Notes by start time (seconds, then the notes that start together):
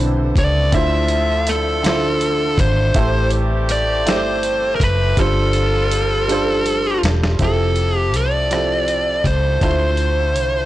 Already playing: B1 C3 D3 E3 G3 C4 D4 E4 G4 A4 B4
0.36 C#2 D5, kick, closed hi-hat
0.72 D2 D3 F3 A3 D4 E4 F4 A4 C5 E5, kick, closed hi-hat
1.08 closed hi-hat
1.47 A4, closed hi-hat
1.83 D3 D4 E4 F4 C5, snare, closed hi-hat
2.21 closed hi-hat
2.58 G#1 C5, kick, closed hi-hat
2.94 A1 E3 G3 A3 C4 E4 G4 A4 C5, kick, closed hi-hat
3.30 closed hi-hat
3.69 D5, closed hi-hat
4.06 G1 A3 E4 G4 C5 D5, snare, closed hi-hat
4.10 C5
4.43 closed hi-hat
4.75 A#4
4.80 F#1 B4, kick, closed hi-hat
5.17 G1 D3 F3 G3 C4 D4 F4 A4 C5, kick, closed hi-hat
5.53 closed hi-hat
5.91 closed hi-hat
6.28 G3 D4 F4 A4 C5, closed hi-hat
6.66 closed hi-hat
7.03 E1, snare, closed hi-hat
7.23 snare
7.39 F1 F3 C4 E4 G4 A4, kick, closed hi-hat
7.76 closed hi-hat
7.98 G4
8.14 C2 D5, closed hi-hat
8.51 F3 C4 E4 G4 A4, cross-stick, closed hi-hat
8.88 closed hi-hat
9.24 C#2 C5, kick, closed hi-hat
9.61 D2 D3 A3 E4 F4 C5, kick, closed hi-hat
9.97 closed hi-hat
10.36 C2, closed hi-hat